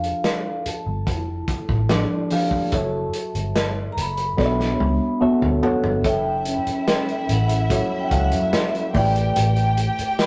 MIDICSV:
0, 0, Header, 1, 8, 480
1, 0, Start_track
1, 0, Tempo, 828729
1, 1581, Time_signature, 4, 2, 24, 8
1, 5944, End_track
2, 0, Start_track
2, 0, Title_t, "Vibraphone"
2, 0, Program_c, 0, 11
2, 0, Note_on_c, 0, 77, 83
2, 392, Note_on_c, 0, 81, 85
2, 413, Note_off_c, 0, 77, 0
2, 1590, Note_off_c, 0, 81, 0
2, 1597, Note_on_c, 0, 81, 86
2, 2067, Note_off_c, 0, 81, 0
2, 2074, Note_on_c, 0, 81, 84
2, 2161, Note_off_c, 0, 81, 0
2, 2273, Note_on_c, 0, 82, 74
2, 2307, Note_off_c, 0, 82, 0
2, 2325, Note_on_c, 0, 83, 91
2, 3010, Note_off_c, 0, 83, 0
2, 3526, Note_on_c, 0, 79, 86
2, 4245, Note_on_c, 0, 78, 88
2, 4255, Note_off_c, 0, 79, 0
2, 4631, Note_on_c, 0, 79, 79
2, 4635, Note_off_c, 0, 78, 0
2, 4674, Note_off_c, 0, 79, 0
2, 4676, Note_on_c, 0, 78, 77
2, 4723, Note_off_c, 0, 78, 0
2, 4728, Note_on_c, 0, 76, 74
2, 4775, Note_off_c, 0, 76, 0
2, 4775, Note_on_c, 0, 78, 76
2, 4825, Note_off_c, 0, 78, 0
2, 4828, Note_on_c, 0, 76, 81
2, 5162, Note_off_c, 0, 76, 0
2, 5193, Note_on_c, 0, 79, 91
2, 5916, Note_on_c, 0, 83, 106
2, 5930, Note_off_c, 0, 79, 0
2, 5944, Note_off_c, 0, 83, 0
2, 5944, End_track
3, 0, Start_track
3, 0, Title_t, "String section"
3, 0, Program_c, 1, 48
3, 3494, Note_on_c, 1, 64, 78
3, 3494, Note_on_c, 1, 76, 90
3, 5155, Note_off_c, 1, 64, 0
3, 5155, Note_off_c, 1, 76, 0
3, 5180, Note_on_c, 1, 79, 98
3, 5183, Note_on_c, 1, 67, 80
3, 5944, Note_off_c, 1, 67, 0
3, 5944, Note_off_c, 1, 79, 0
3, 5944, End_track
4, 0, Start_track
4, 0, Title_t, "Reed electric piano"
4, 0, Program_c, 2, 4
4, 0, Control_c, 2, 64, 127
4, 0, Note_on_c, 2, 53, 64
4, 0, Note_on_c, 2, 62, 56
4, 0, Note_on_c, 2, 67, 61
4, 0, Note_on_c, 2, 69, 66
4, 0, Note_on_c, 2, 77, 76
4, 256, Note_off_c, 2, 53, 0
4, 257, Note_off_c, 2, 62, 0
4, 258, Note_off_c, 2, 67, 0
4, 260, Note_off_c, 2, 69, 0
4, 260, Note_off_c, 2, 77, 0
4, 1096, Note_on_c, 2, 53, 88
4, 1098, Note_on_c, 2, 62, 76
4, 1103, Note_on_c, 2, 67, 79
4, 1105, Note_on_c, 2, 69, 74
4, 1107, Note_on_c, 2, 74, 100
4, 1247, Note_off_c, 2, 53, 0
4, 1248, Note_off_c, 2, 62, 0
4, 1251, Note_off_c, 2, 67, 0
4, 1252, Note_off_c, 2, 69, 0
4, 1253, Note_off_c, 2, 74, 0
4, 1338, Note_on_c, 2, 53, 81
4, 1340, Note_on_c, 2, 62, 69
4, 1342, Note_on_c, 2, 67, 72
4, 1345, Note_on_c, 2, 69, 67
4, 1348, Note_on_c, 2, 77, 83
4, 1489, Note_off_c, 2, 53, 0
4, 1490, Note_off_c, 2, 62, 0
4, 1491, Note_off_c, 2, 67, 0
4, 1492, Note_off_c, 2, 69, 0
4, 1494, Note_off_c, 2, 77, 0
4, 1577, Note_on_c, 2, 54, 72
4, 1581, Note_on_c, 2, 69, 64
4, 1582, Note_on_c, 2, 66, 63
4, 1586, Note_on_c, 2, 73, 66
4, 1587, Control_c, 2, 64, 0
4, 1588, Note_on_c, 2, 76, 80
4, 1683, Control_c, 2, 64, 127
4, 2176, Note_off_c, 2, 54, 0
4, 2178, Note_off_c, 2, 69, 0
4, 2179, Note_off_c, 2, 66, 0
4, 2181, Note_off_c, 2, 73, 0
4, 2182, Note_off_c, 2, 76, 0
4, 2533, Note_on_c, 2, 59, 77
4, 2534, Note_on_c, 2, 66, 73
4, 2536, Note_on_c, 2, 69, 67
4, 2540, Note_on_c, 2, 73, 70
4, 2543, Note_on_c, 2, 74, 72
4, 2549, Control_c, 2, 64, 0
4, 2580, Note_off_c, 2, 74, 0
4, 2580, Note_on_c, 2, 76, 85
4, 2638, Control_c, 2, 64, 127
4, 2921, Note_off_c, 2, 59, 0
4, 2922, Note_off_c, 2, 66, 0
4, 2923, Note_off_c, 2, 69, 0
4, 2925, Note_off_c, 2, 73, 0
4, 2945, Note_off_c, 2, 76, 0
4, 3016, Note_on_c, 2, 59, 86
4, 3018, Note_on_c, 2, 69, 81
4, 3019, Note_on_c, 2, 66, 85
4, 3020, Note_on_c, 2, 73, 77
4, 3023, Note_on_c, 2, 76, 92
4, 3168, Note_off_c, 2, 59, 0
4, 3169, Note_off_c, 2, 66, 0
4, 3169, Note_off_c, 2, 69, 0
4, 3170, Note_off_c, 2, 73, 0
4, 3172, Note_off_c, 2, 76, 0
4, 3258, Note_on_c, 2, 59, 80
4, 3260, Note_on_c, 2, 66, 74
4, 3262, Note_on_c, 2, 69, 73
4, 3266, Note_on_c, 2, 73, 76
4, 3269, Note_on_c, 2, 78, 89
4, 3409, Note_off_c, 2, 59, 0
4, 3410, Note_off_c, 2, 66, 0
4, 3411, Note_off_c, 2, 69, 0
4, 3413, Note_off_c, 2, 73, 0
4, 3415, Note_off_c, 2, 78, 0
4, 3499, Note_on_c, 2, 54, 69
4, 3503, Note_on_c, 2, 64, 61
4, 3504, Note_on_c, 2, 69, 65
4, 3507, Note_on_c, 2, 73, 68
4, 3508, Control_c, 2, 64, 0
4, 3509, Note_on_c, 2, 76, 76
4, 3616, Control_c, 2, 64, 127
4, 4098, Note_off_c, 2, 54, 0
4, 4099, Note_off_c, 2, 64, 0
4, 4100, Note_off_c, 2, 69, 0
4, 4102, Note_off_c, 2, 73, 0
4, 4102, Note_off_c, 2, 76, 0
4, 4457, Note_on_c, 2, 54, 71
4, 4460, Note_on_c, 2, 66, 71
4, 4463, Note_on_c, 2, 69, 67
4, 4464, Note_on_c, 2, 73, 66
4, 4467, Note_on_c, 2, 76, 84
4, 4609, Note_off_c, 2, 54, 0
4, 4610, Note_off_c, 2, 66, 0
4, 4612, Note_off_c, 2, 69, 0
4, 4612, Note_off_c, 2, 73, 0
4, 4614, Note_off_c, 2, 76, 0
4, 4697, Note_on_c, 2, 54, 69
4, 4698, Note_on_c, 2, 66, 61
4, 4702, Note_on_c, 2, 69, 63
4, 4704, Note_on_c, 2, 77, 56
4, 4705, Note_on_c, 2, 73, 58
4, 4741, Note_off_c, 2, 77, 0
4, 4743, Note_on_c, 2, 78, 77
4, 5147, Note_off_c, 2, 54, 0
4, 5148, Note_off_c, 2, 66, 0
4, 5150, Note_off_c, 2, 69, 0
4, 5151, Note_off_c, 2, 73, 0
4, 5171, Note_off_c, 2, 78, 0
4, 5177, Note_on_c, 2, 57, 74
4, 5177, Note_on_c, 2, 64, 77
4, 5181, Note_on_c, 2, 67, 72
4, 5184, Note_on_c, 2, 71, 74
4, 5185, Note_on_c, 2, 74, 91
4, 5189, Control_c, 2, 64, 0
4, 5284, Control_c, 2, 64, 127
4, 5944, Note_off_c, 2, 57, 0
4, 5944, Note_off_c, 2, 64, 0
4, 5944, Note_off_c, 2, 67, 0
4, 5944, Note_off_c, 2, 71, 0
4, 5944, Note_off_c, 2, 74, 0
4, 5944, End_track
5, 0, Start_track
5, 0, Title_t, "Vibraphone"
5, 0, Program_c, 3, 11
5, 0, Note_on_c, 3, 65, 50
5, 624, Note_on_c, 3, 64, 52
5, 764, Note_on_c, 3, 55, 51
5, 911, Note_on_c, 3, 69, 51
5, 1118, Note_off_c, 3, 65, 0
5, 1800, Note_off_c, 3, 64, 0
5, 1929, Note_off_c, 3, 55, 0
5, 2063, Note_off_c, 3, 69, 0
5, 2525, Note_on_c, 3, 62, 55
5, 3711, Note_off_c, 3, 62, 0
5, 3728, Note_on_c, 3, 61, 78
5, 4217, Note_on_c, 3, 64, 53
5, 4936, Note_on_c, 3, 69, 58
5, 5190, Note_off_c, 3, 61, 0
5, 5396, Note_off_c, 3, 69, 0
5, 5397, Note_off_c, 3, 64, 0
5, 5918, Note_on_c, 3, 67, 63
5, 5944, Note_off_c, 3, 67, 0
5, 5944, End_track
6, 0, Start_track
6, 0, Title_t, "Fingered electric bass"
6, 0, Program_c, 4, 33
6, 499, Note_on_c, 4, 31, 82
6, 619, Note_off_c, 4, 31, 0
6, 619, Note_on_c, 4, 29, 99
6, 817, Note_off_c, 4, 29, 0
6, 979, Note_on_c, 4, 33, 82
6, 1177, Note_off_c, 4, 33, 0
6, 1579, Note_on_c, 4, 30, 103
6, 1777, Note_off_c, 4, 30, 0
6, 1938, Note_on_c, 4, 31, 87
6, 2235, Note_off_c, 4, 31, 0
6, 2298, Note_on_c, 4, 30, 78
6, 2497, Note_off_c, 4, 30, 0
6, 2539, Note_on_c, 4, 35, 93
6, 2737, Note_off_c, 4, 35, 0
6, 2780, Note_on_c, 4, 37, 78
6, 2879, Note_off_c, 4, 37, 0
6, 3140, Note_on_c, 4, 38, 76
6, 3239, Note_off_c, 4, 38, 0
6, 3381, Note_on_c, 4, 31, 78
6, 3480, Note_off_c, 4, 31, 0
6, 3500, Note_on_c, 4, 30, 97
6, 3797, Note_off_c, 4, 30, 0
6, 4222, Note_on_c, 4, 33, 85
6, 4518, Note_off_c, 4, 33, 0
6, 4699, Note_on_c, 4, 37, 88
6, 4799, Note_off_c, 4, 37, 0
6, 4826, Note_on_c, 4, 42, 93
6, 4923, Note_off_c, 4, 42, 0
6, 5182, Note_on_c, 4, 33, 105
6, 5380, Note_off_c, 4, 33, 0
6, 5423, Note_on_c, 4, 33, 113
6, 5719, Note_off_c, 4, 33, 0
6, 5944, End_track
7, 0, Start_track
7, 0, Title_t, "Muted fingered electric bass strokes"
7, 381, Note_on_c, 9, 29, 44
7, 439, Note_off_c, 9, 29, 0
7, 3023, Note_on_c, 9, 29, 46
7, 3081, Note_off_c, 9, 29, 0
7, 3861, Note_on_c, 9, 29, 44
7, 3919, Note_off_c, 9, 29, 0
7, 5785, Note_on_c, 9, 29, 47
7, 5843, Note_off_c, 9, 29, 0
7, 5944, End_track
8, 0, Start_track
8, 0, Title_t, "Drums"
8, 22, Note_on_c, 9, 42, 49
8, 80, Note_off_c, 9, 42, 0
8, 140, Note_on_c, 9, 38, 92
8, 140, Note_on_c, 9, 42, 76
8, 198, Note_off_c, 9, 38, 0
8, 198, Note_off_c, 9, 42, 0
8, 381, Note_on_c, 9, 42, 75
8, 439, Note_off_c, 9, 42, 0
8, 619, Note_on_c, 9, 36, 91
8, 621, Note_on_c, 9, 42, 78
8, 677, Note_off_c, 9, 36, 0
8, 679, Note_off_c, 9, 42, 0
8, 856, Note_on_c, 9, 36, 88
8, 857, Note_on_c, 9, 42, 65
8, 914, Note_off_c, 9, 36, 0
8, 915, Note_off_c, 9, 42, 0
8, 978, Note_on_c, 9, 36, 85
8, 1036, Note_off_c, 9, 36, 0
8, 1097, Note_on_c, 9, 38, 107
8, 1097, Note_on_c, 9, 42, 77
8, 1155, Note_off_c, 9, 38, 0
8, 1155, Note_off_c, 9, 42, 0
8, 1335, Note_on_c, 9, 46, 75
8, 1393, Note_off_c, 9, 46, 0
8, 1454, Note_on_c, 9, 36, 85
8, 1512, Note_off_c, 9, 36, 0
8, 1575, Note_on_c, 9, 42, 93
8, 1578, Note_on_c, 9, 36, 108
8, 1633, Note_off_c, 9, 42, 0
8, 1636, Note_off_c, 9, 36, 0
8, 1816, Note_on_c, 9, 42, 66
8, 1874, Note_off_c, 9, 42, 0
8, 1940, Note_on_c, 9, 42, 49
8, 1998, Note_off_c, 9, 42, 0
8, 2059, Note_on_c, 9, 38, 102
8, 2060, Note_on_c, 9, 42, 84
8, 2117, Note_off_c, 9, 38, 0
8, 2117, Note_off_c, 9, 42, 0
8, 2303, Note_on_c, 9, 42, 76
8, 2361, Note_off_c, 9, 42, 0
8, 2417, Note_on_c, 9, 42, 52
8, 2475, Note_off_c, 9, 42, 0
8, 2539, Note_on_c, 9, 36, 85
8, 2542, Note_on_c, 9, 38, 51
8, 2597, Note_off_c, 9, 36, 0
8, 2600, Note_off_c, 9, 38, 0
8, 2664, Note_on_c, 9, 38, 50
8, 2722, Note_off_c, 9, 38, 0
8, 2782, Note_on_c, 9, 48, 67
8, 2840, Note_off_c, 9, 48, 0
8, 3140, Note_on_c, 9, 45, 75
8, 3198, Note_off_c, 9, 45, 0
8, 3262, Note_on_c, 9, 43, 90
8, 3320, Note_off_c, 9, 43, 0
8, 3380, Note_on_c, 9, 43, 83
8, 3438, Note_off_c, 9, 43, 0
8, 3501, Note_on_c, 9, 36, 109
8, 3501, Note_on_c, 9, 42, 88
8, 3559, Note_off_c, 9, 36, 0
8, 3559, Note_off_c, 9, 42, 0
8, 3738, Note_on_c, 9, 42, 67
8, 3796, Note_off_c, 9, 42, 0
8, 3862, Note_on_c, 9, 42, 53
8, 3920, Note_off_c, 9, 42, 0
8, 3983, Note_on_c, 9, 38, 99
8, 3983, Note_on_c, 9, 42, 85
8, 4041, Note_off_c, 9, 38, 0
8, 4041, Note_off_c, 9, 42, 0
8, 4104, Note_on_c, 9, 42, 33
8, 4162, Note_off_c, 9, 42, 0
8, 4223, Note_on_c, 9, 42, 75
8, 4281, Note_off_c, 9, 42, 0
8, 4340, Note_on_c, 9, 42, 59
8, 4398, Note_off_c, 9, 42, 0
8, 4461, Note_on_c, 9, 36, 88
8, 4463, Note_on_c, 9, 42, 92
8, 4519, Note_off_c, 9, 36, 0
8, 4521, Note_off_c, 9, 42, 0
8, 4699, Note_on_c, 9, 36, 85
8, 4699, Note_on_c, 9, 42, 71
8, 4757, Note_off_c, 9, 36, 0
8, 4757, Note_off_c, 9, 42, 0
8, 4817, Note_on_c, 9, 42, 58
8, 4875, Note_off_c, 9, 42, 0
8, 4941, Note_on_c, 9, 38, 109
8, 4941, Note_on_c, 9, 42, 82
8, 4998, Note_off_c, 9, 38, 0
8, 4999, Note_off_c, 9, 42, 0
8, 5067, Note_on_c, 9, 42, 34
8, 5125, Note_off_c, 9, 42, 0
8, 5180, Note_on_c, 9, 46, 56
8, 5182, Note_on_c, 9, 36, 97
8, 5238, Note_off_c, 9, 46, 0
8, 5240, Note_off_c, 9, 36, 0
8, 5304, Note_on_c, 9, 42, 55
8, 5362, Note_off_c, 9, 42, 0
8, 5421, Note_on_c, 9, 42, 96
8, 5479, Note_off_c, 9, 42, 0
8, 5538, Note_on_c, 9, 42, 37
8, 5596, Note_off_c, 9, 42, 0
8, 5661, Note_on_c, 9, 42, 69
8, 5719, Note_off_c, 9, 42, 0
8, 5785, Note_on_c, 9, 42, 54
8, 5842, Note_off_c, 9, 42, 0
8, 5902, Note_on_c, 9, 38, 104
8, 5902, Note_on_c, 9, 42, 84
8, 5944, Note_off_c, 9, 38, 0
8, 5944, Note_off_c, 9, 42, 0
8, 5944, End_track
0, 0, End_of_file